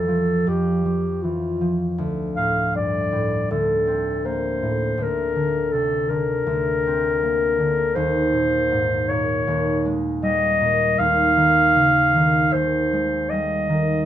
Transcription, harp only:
Already playing: F2 E3
0.08 F3
0.47 F2
0.85 F3
1.24 E3
1.61 F3
1.98 D2
2.37 A2
2.75 G2
3.12 A2
3.51 D2
3.87 C4
4.25 A#3
4.62 A2
4.98 D2
5.36 D3
5.74 C3
6.10 D3
6.46 D2
6.87 C4
7.23 A#3
7.59 D3
7.96 D#2
8.33 A#2
8.71 G#2
9.10 A#2
9.47 D#2
9.85 G#3
10.22 G3
10.61 A#2
11.00 D#2
11.37 D#3
11.76 C#3
12.15 D#3
12.53 D#2
12.93 G#3
13.32 G3
13.69 D#3

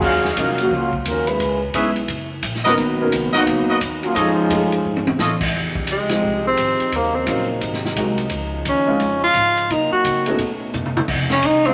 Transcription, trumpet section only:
0.02 F#4 C#5 D#5 F5
1.74 G#4 B4 C#5 E5
2.64 F#4 A#4 B4 D#5
3.33 F#4 A#4 B4 D#5
3.68 F#4 A#4 B4 D#5
4.15 F4 A4 C#5 D#5
5.19 F4 A4 C#5 D#5

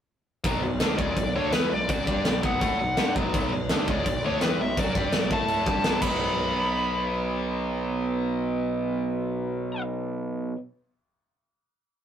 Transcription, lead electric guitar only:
0.98 D5
1.36 C#5
1.53 B4
1.73 D5
1.90 D5
2.45 F#5
3.91 D5
4.26 C#5
4.43 B4
4.61 E5
4.79 D5
5.33 A5
6.02 B5

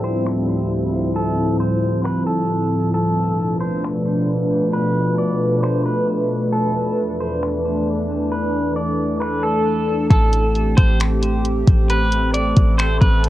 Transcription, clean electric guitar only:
0.04 C5
1.16 A4
1.60 C5
2.04 B4
2.27 A4
2.94 A4
3.61 C5
4.73 B4
5.18 D5
5.63 C5
5.85 B4
6.52 A4
7.20 C5
8.32 B4
8.76 D5
9.20 B4
9.43 A4
10.11 A4
10.77 C5
11.90 B4
12.34 D5
12.78 C5
13.01 B4

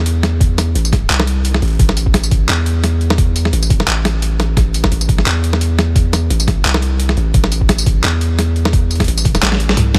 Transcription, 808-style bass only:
Already playing: E2
0.75 A1
1.10 C2
1.62 A1
1.79 A1
2.14 A1
2.49 E2
3.53 A1
3.88 A1
4.57 A1
4.92 A1
5.26 E2
6.30 A1
6.65 C2
7.17 A1
7.34 A1
7.69 A1
8.04 E2
9.08 A1
9.43 A1
9.77 C2

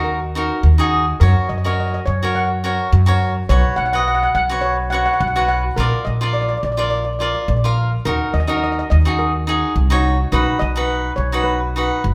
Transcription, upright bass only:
Already playing: D#2
0.63 D#2
1.21 F#2
1.50 F#2
2.07 F#2
2.92 F#2
3.49 B1
3.78 B1
4.35 B1
5.21 B1
5.77 A#1
6.07 A#1
6.63 A#1
7.48 A#1
8.06 D#2
8.34 D#2
8.91 D#2
9.76 C2
10.32 B1
10.61 B1
11.18 B1
12.04 F#1

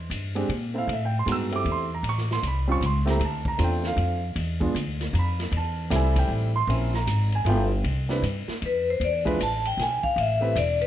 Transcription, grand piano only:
0.35 G#3 C4 D4 G4
0.74 A3 C4 E4 A4 F5
0.93 E5
1.05 G5
1.19 C6
1.26 G#3 B3 D#4 F#4
1.32 E6
1.52 A3 C4 E4 G4
1.56 D6
1.72 C6
1.95 A#5
2.09 C#6
2.33 C6
2.48 B5
2.68 G3 C4 C#4 F4
2.72 C#6
2.86 C6
3.06 A3 C4 E4 G4
3.10 A#5
3.25 A5
3.48 A#5
3.58 A3 C4 D4 F4
3.64 G5
3.87 F5
4.60 G#3 B3 D4 F4
5.14 A#5
5.19 B5
5.57 A5
5.90 G3 A3 C4 E4
5.95 G#5
6.19 G5
6.56 C6
6.68 A#3 C4 C#4 E4
6.95 A#5
7.35 G#5
7.45 A3 B3 E4 F4
7.49 G5
8.09 G3 C4 D4 E4 B4
9.25 G#3 D4 E4 F4 B4
10.40 A3 C4 E4 G4 B4

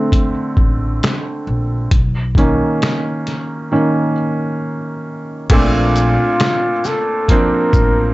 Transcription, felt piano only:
Already playing: D3 A3 C4
2.37 D#3 A#3 C#4
3.72 D#3 A#3 C#4
5.51 A#2 A3 C4 D4
7.30 F3 A#3 C4 D4

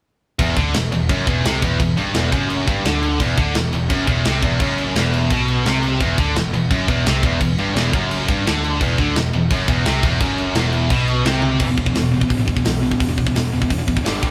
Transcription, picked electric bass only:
0.39 E1
0.57 D2
0.75 E1
0.92 E1
1.09 F#1
1.27 E1
1.45 C2
1.62 E1
1.80 E1
1.97 G1
2.15 E1
2.33 F#1
2.68 G1
2.86 D2
3.20 E1
3.38 D2
3.56 E1
3.73 E1
3.90 F#1
4.08 E1
4.26 C2
4.43 E1
4.60 F#1
4.96 E1
5.31 B1
5.66 C2
6.00 E1
6.18 D2
6.35 E1
6.53 E1
6.71 F#1
6.88 E1
7.05 C2
7.23 E1
7.41 E1
7.58 G1
7.76 E1
7.94 F#1
8.29 G1
8.47 D2
8.81 E1
8.99 D2
9.16 E1
9.34 E1
9.51 F#1
9.68 E1
9.86 C2
10.03 E1
10.20 F#1
10.55 E1
10.90 B1
11.26 C2
11.60 E1
11.78 E1
11.96 E1
12.30 A1
12.48 E1
12.67 B1
13.01 E1
13.36 E1
13.54 E1
13.70 E1
13.88 E2
14.06 G1
14.23 G1

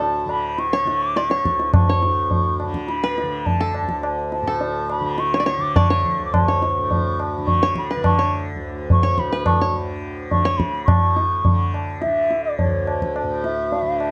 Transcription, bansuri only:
Already playing: A5
0.30 B5
0.59 C#6
1.03 D6
1.17 C#6
1.75 C#6
2.88 B5
3.46 A5
4.33 A5
4.91 B5
5.19 C#6
5.61 D6
5.76 C#6
6.26 D6
6.33 C6
6.45 C#6
7.47 C#6
7.78 B5
8.05 C#6
8.92 C#6
9.19 B5
9.46 C#6
10.31 C#6
10.58 B5
10.85 C#6
12.01 E5
12.44 D5
12.59 C#5
13.44 E5

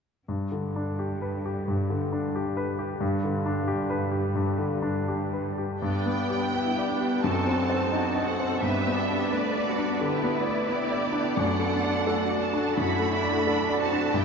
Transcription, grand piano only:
0.28 G2
0.52 D3
0.76 D4
0.99 G4
1.22 B4
1.46 G4
1.68 G2
1.90 D3
2.12 D4
2.36 G4
2.57 B4
2.79 G4
3.01 G2
3.24 D3
3.46 D4
3.68 G4
3.90 B4
4.11 G4
4.35 G2
4.58 D3
4.82 D4
5.08 G4
5.33 B4
5.58 G4
5.82 G2
6.06 B3
6.30 G4
6.54 B4
6.78 D5
7.00 G4
7.24 F#2
7.47 C4
7.70 C5
7.92 D#4
8.15 D#5
8.40 C5
8.62 G2
8.86 B3
9.10 D5
9.32 B4
9.57 D5
9.79 D4
10.01 D3
10.23 B3
10.46 D5
10.69 B4
10.91 D5
11.12 D4
11.37 F#2
11.59 A3
11.84 D5
12.07 A4
12.29 D5
12.53 D4
12.77 F#2
12.99 A3
13.24 D5
13.47 A4
13.69 D5
13.92 D4
14.14 G2

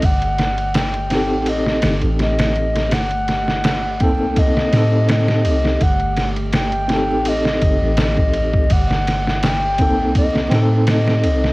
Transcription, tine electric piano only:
1.10 C4 D#4 G4
1.15 A4
4.00 A#3 C4 D#4 A4
4.72 C4 D#4
4.77 A4
6.88 C4 D#4 G4
6.93 A4
9.79 A#3 C4 D#4 A4
10.50 C4 D#4
10.55 A4

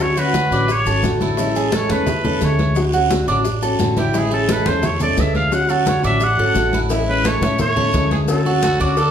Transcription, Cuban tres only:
0.17 F#4
0.52 D4
0.87 A4
1.22 E4
1.39 E4
1.56 G#4
1.73 A4
2.07 E5
2.25 A4
2.94 F#4
3.28 D4
3.63 A4
3.97 E4
4.15 E4
4.31 G#4
4.49 A4
4.83 E5
5.01 A4
5.70 F#4
6.04 D4
6.39 A4
6.74 E4
6.91 E4
7.26 A4
7.43 E5
7.77 A4
8.46 F#4
8.81 D4

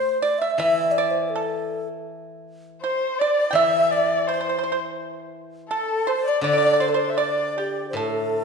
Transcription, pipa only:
Already playing: C5
0.22 D5
0.42 E5
0.59 E5
0.98 D5
1.36 A4
2.84 C5
3.21 D5
3.51 G5
3.55 E5
4.29 C5
4.34 C5
4.41 C5
4.49 C5
4.59 C5
4.64 C5
4.72 C5
5.71 A4
6.07 C5
6.44 D5
6.53 D5
6.58 D5
6.66 D5
6.73 D5
6.80 D5
6.94 C5
7.18 D5
7.58 G4
7.97 A4

